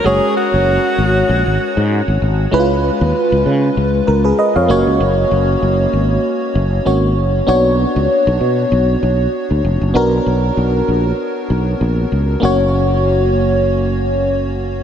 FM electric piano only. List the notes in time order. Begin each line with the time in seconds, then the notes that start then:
0.04 G#3 C#4 F#4 C#5
2.51 G#3 C#4 E4 B4
2.59 F4
4.07 A#4
4.24 G#4 B4
4.39 B4 D#5
4.56 C#5 F5
4.68 A#3 C#4 F#4 C#5
6.85 A#3 C#4 F#4 C#5
7.47 B3 D4 F#4 C#5
9.94 B3 D4 F#4 A#4
12.40 A#3 C#4 F#4
12.45 C#5